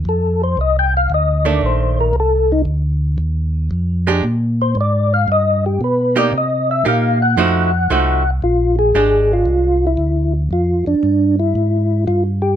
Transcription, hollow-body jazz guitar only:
X:1
M:4/4
L:1/8
Q:"Swing" 1/4=115
K:Bbmix
V:1 name="Hollow-body jazz guitar"
z4 z [E,=A,D]3 | z6 z [A,DG] | z6 z [B,EG] | z2 [B,EG] z [F,=A,E_G] z [F,A,EG] z |
z2 [A,DG]3 z3 | z8 |]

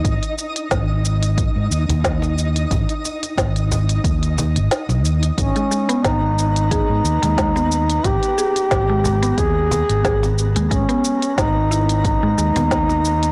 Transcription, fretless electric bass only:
X:1
M:4/4
L:1/16
Q:"Swing 16ths" 1/4=90
K:G#m
V:1 name="Fretless electric bass" clef=bass
G,,, z3 G,,,4- G,,, G,, D,, D,,4- D,, | G,,, z3 G,,,4 D,,3 G,,, z B,,, D,, z | G,,, z3 G,,,4- G,,, G,, D,, D,,4- D,, | G,,, z3 G,,,4 D,,3 G,,,4 D,, |
G,,, z3 G,,,4- G,,, G,, D,, D,,4- D,, |]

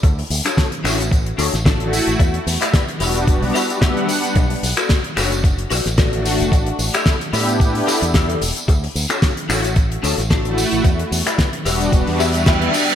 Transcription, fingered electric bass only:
X:1
M:4/4
L:1/16
Q:"Swing 16ths" 1/4=111
K:Edor
V:1 name="Fingered electric bass" clef=bass
D,, z D,, z3 A,,,3 z D,, A,,,3 z A,,, | E,, z E,, z3 E,,,3 B,,, z6 | B,,, z B,,, z3 F,,,3 z B,,, A,,,4 F,,, | A,,, z A,,, z3 A,,3 z2 E,,2 z E,,, z |
D,, z D,, z3 A,,,3 z D,, A,,,3 z A,,, | E,, z E,, z3 E,,,2 E,,, E,,4 z3 |]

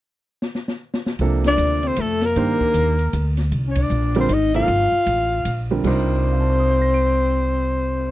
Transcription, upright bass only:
X:1
M:3/4
L:1/8
Q:"Swing" 1/4=155
K:Cdor
V:1 name="Upright bass" clef=bass
z6 | C,,2 D,,2 F,,2 | G,, z E,,2 D,,2 | C,,2 B,,,2 _A,,,2 |
G,,, z A,,,2 B,,,2 | C,,6- | C,,6 |]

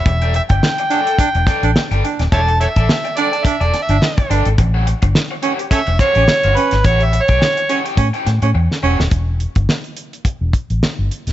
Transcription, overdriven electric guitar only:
X:1
M:4/4
L:1/16
Q:"Swing 16ths" 1/4=106
K:Edor
V:1 name="Overdriven electric guitar"
z [Adg] z4 [Adg] z3 [Adg] z2 [Adg] z2 | [Adg] z2 [Ada] z2 [Adg] [Ada] z [Ada] z4 [Adg] z | z [Gcf] z4 [Gcf] z3 [Gcf] z2 [Gcf] z2 | [Gcf] z2 [Gcg] z2 [Gcf] [Gcg] z [Gcg] z4 [Gcf] z |
z16 |]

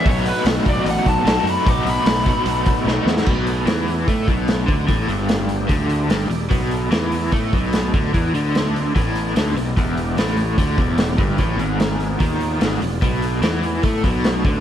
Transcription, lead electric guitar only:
X:1
M:4/4
L:1/8
Q:1/4=148
K:E
V:1 name="Lead electric guitar"
c B z =d f a2 b | =d' b6 z | z8 | z8 |
z8 | z8 | z8 | z8 |
z8 |]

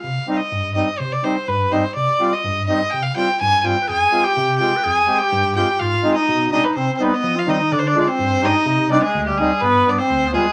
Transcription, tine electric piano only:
X:1
M:2/4
L:1/8
Q:1/4=125
K:Cm
V:1 name="Tine electric piano" clef=bass
C, z G,,2 | C, z G,,2 | C, z G,,2 | C, z G,,2 |
F,, z C,2 | F,, z G,,2 | A,, z =B,,2 | C, z F, E, |
D,2 G,,2 | C,2 D,,2 | G,,2 D,,2 |]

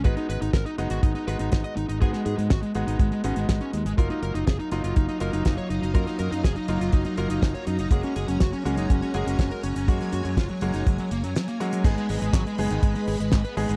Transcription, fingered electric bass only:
X:1
M:4/4
L:1/16
Q:1/4=122
K:Abdor
V:1 name="Fingered electric bass" clef=bass
A,,, z A,,, A,,, A,,, z G,,, A,,, A,,, z A,,, A,,, A,,, z A,,, A,,, | A,, z A,, A,, A,,, z A,,, A,,, A,,, z A,,, A,,, A,,, z E,, A,,, | G,,, z G,,, G,,, G,,, z G,,, G,,, G,,, z G,,, G,,, G,,, z G,,, z | G,, z G,, G,, G,,, z G,,, G,,, G,,, z G,,, G,,, G,,, z G,, G,,, |
G,,, z G,,, G,,, G,,, z D,, G,,, G,,, z G,,, G,,, G,,, z G,,, G,,, | G,, z G,, G,, G,,, z G,,, G,,, G,,, z G,,, G,, z4 | A,,, z A,,, A,,, A,,, z G,,, A,,, A,,, z A,,, A,,, A,,, z A,,, A,,, |]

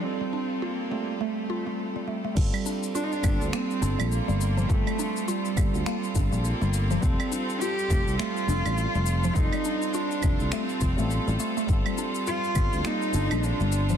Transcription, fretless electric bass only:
X:1
M:4/4
L:1/16
Q:"Swing 16ths" 1/4=103
K:Gm
V:1 name="Fretless electric bass" clef=bass
z16 | G,,, z4 z G,,, D,, z2 G,,, B,,, z G,,,3 | G,,, z4 z G,,, D,, z2 G,,, B,,, z G,,,3 | F,,, z4 z F,,, C,, z2 F,,, A,,, z F,,,3 |
F,,, z4 z F,,, C,, z2 F,,, A,,, z A,,, z2 | G,,, z4 z G,,, D,, z2 G,,, B,,, z G,,,3 |]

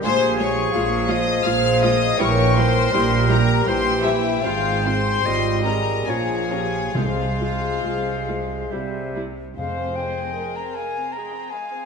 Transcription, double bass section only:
X:1
M:3/4
L:1/8
Q:1/4=76
K:Fm
V:1 name="Double bass section" clef=bass
B,,,2 B,,,2 B,,,2 | B,,,2 B,,,2 B,,,2 | A,,,2 A,,,2 B,,,2 | C,,2 C,,2 C,,2 |
F,,,2 z4 |]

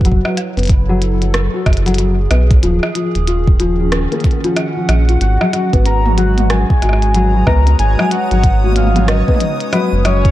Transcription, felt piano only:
X:1
M:4/4
L:1/16
Q:"Swing 16ths" 1/4=93
K:Abm
V:1 name="Felt piano" clef=bass
G, G, z C z G, z G, z G z G, G, z C z | =F, z F, z =F z F, F, z B, z F, z F, z F | z G, G, C C z G, z G, z G z G, G, C C | z G, z G, z G z G, G, C C z G, z G, z |]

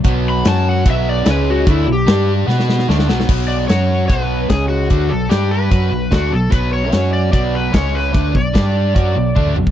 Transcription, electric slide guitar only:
X:1
M:4/4
L:1/8
Q:1/4=148
K:Bm
V:1 name="Electric slide guitar"
z b a f e d B F | E G2 z4 z | z d c2 B2 ^G F- | F A G B3 F A |
B c2 d d B c B- | B d6 z |]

